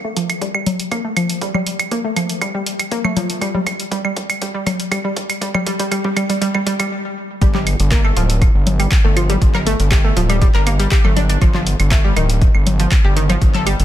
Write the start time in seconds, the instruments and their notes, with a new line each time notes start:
0.04 synth arpeggio sound A3
0.17 synth arpeggio sound F3, open hi-hat
0.30 closed hi-hat, claves
0.41 synth arpeggio sound G3, kick, closed hi-hat
0.54 synth arpeggio sound G3, claves
0.67 open hi-hat, low conga
0.80 closed hi-hat
0.92 synth arpeggio sound A#3, kick, closed hi-hat, claves
1.05 synth arpeggio sound A3
1.17 synth arpeggio sound F3, open hi-hat, claves
1.30 closed hi-hat
1.41 synth arpeggio sound G3, kick, closed hi-hat
1.54 synth arpeggio sound G3, low conga, claves
1.67 open hi-hat
1.79 closed hi-hat, claves
1.91 synth arpeggio sound A#3, kick, closed hi-hat
2.04 synth arpeggio sound A3
2.16 synth arpeggio sound F3, open hi-hat, claves
2.29 closed hi-hat
2.41 synth arpeggio sound G3, kick, closed hi-hat, claves
2.54 synth arpeggio sound G3
2.67 open hi-hat
2.79 closed hi-hat, claves
2.91 synth arpeggio sound A#3, kick, closed hi-hat
3.04 synth arpeggio sound A3, low conga, claves
3.16 synth arpeggio sound F3, open hi-hat, low conga
3.30 closed hi-hat
3.41 synth arpeggio sound G3, kick, closed hi-hat, claves
3.54 synth arpeggio sound G3, low conga
3.67 kick, open hi-hat, claves
3.80 closed hi-hat
3.91 synth arpeggio sound G3, kick, closed hi-hat
4.04 synth arpeggio sound G3, claves
4.17 kick, open hi-hat
4.30 closed hi-hat, claves
4.41 synth arpeggio sound G3, kick, closed hi-hat
4.54 synth arpeggio sound G3
4.67 kick, open hi-hat, low conga, claves
4.80 closed hi-hat
4.91 synth arpeggio sound G3, kick, closed hi-hat, claves
5.04 synth arpeggio sound G3
5.17 kick, open hi-hat
5.30 closed hi-hat, claves
5.41 synth arpeggio sound G3, kick, closed hi-hat
5.54 synth arpeggio sound G3, kick, low conga, claves
5.66 synth arpeggio sound G3, kick, open hi-hat
5.79 synth arpeggio sound G3, kick, closed hi-hat
5.91 synth arpeggio sound G3, kick, closed hi-hat, claves
6.04 synth arpeggio sound G3, kick
6.16 synth arpeggio sound G3, kick, open hi-hat, claves
6.29 synth arpeggio sound G3, kick, closed hi-hat
6.41 synth arpeggio sound G3, kick, closed hi-hat
6.54 synth arpeggio sound G3, kick, claves
6.66 synth arpeggio sound G3, kick, open hi-hat
6.79 synth arpeggio sound G3, kick, closed hi-hat, claves
7.42 analog synth bass G1, synth arpeggio sound G3 G4, kick, closed hi-hat
7.55 synth arpeggio sound G3 G4, clap, low conga
7.67 open hi-hat, claves
7.80 analog synth bass G1, closed hi-hat
7.92 synth arpeggio sound A#3 A#4, kick, clap, closed hi-hat
8.05 synth arpeggio sound A3 A4, claves
8.16 analog synth bass D1, synth arpeggio sound F3 F4, open hi-hat
8.30 closed hi-hat
8.42 kick, closed hi-hat, claves
8.55 analog synth bass G1
8.67 open hi-hat, low conga
8.79 synth arpeggio sound G3 G4, closed hi-hat, claves
8.92 kick, clap, closed hi-hat
9.04 analog synth bass G1, synth arpeggio sound A3 A4
9.16 synth arpeggio sound F3 F4, open hi-hat, claves
9.29 synth arpeggio sound G3 G4, closed hi-hat, low conga
9.42 analog synth bass G1, kick, closed hi-hat
9.54 synth arpeggio sound A#4 A#5, clap, low conga, claves
9.66 synth arpeggio sound A3 A4, open hi-hat
9.80 analog synth bass G1, closed hi-hat
9.92 synth arpeggio sound G4 G5, kick, clap, closed hi-hat, claves
10.04 synth arpeggio sound A3 A4
10.16 analog synth bass D1, synth arpeggio sound F3 F4, open hi-hat
10.29 synth arpeggio sound G3 G4, closed hi-hat, claves
10.42 synth arpeggio sound G3 G4, kick, closed hi-hat
10.55 analog synth bass G1, synth arpeggio sound A#4 A#5, clap
10.66 synth arpeggio sound A#3 A#4, open hi-hat, claves
10.79 synth arpeggio sound G3 G4, closed hi-hat
10.91 synth arpeggio sound G4 G5, kick, clap, closed hi-hat
11.04 analog synth bass G1, synth arpeggio sound A3 A4, low conga, claves
11.16 synth arpeggio sound D4 D5, open hi-hat, low conga
11.29 synth arpeggio sound D4 D5, closed hi-hat
11.41 analog synth bass G1, synth arpeggio sound F3 F4, kick, closed hi-hat, claves
11.54 synth arpeggio sound F3 F4, clap, low conga
11.67 open hi-hat
11.80 analog synth bass G1, closed hi-hat, claves
11.91 synth arpeggio sound A3 A4, kick, clap, closed hi-hat
12.04 synth arpeggio sound G3 G4
12.16 analog synth bass D1, synth arpeggio sound D#3 D#4, open hi-hat, claves
12.30 closed hi-hat
12.42 kick, closed hi-hat
12.55 analog synth bass G1, claves
12.67 open hi-hat, low conga
12.80 synth arpeggio sound F3 F4, closed hi-hat
12.92 kick, clap, closed hi-hat, claves
13.04 analog synth bass G1, synth arpeggio sound G3 G4
13.16 synth arpeggio sound D#3 D#4, open hi-hat
13.29 synth arpeggio sound F3 F4, closed hi-hat, low conga, claves
13.42 analog synth bass G1, kick, closed hi-hat
13.54 synth arpeggio sound A4 A5, clap, low conga
13.66 synth arpeggio sound G3 G4, open hi-hat, claves
13.80 analog synth bass G1, closed hi-hat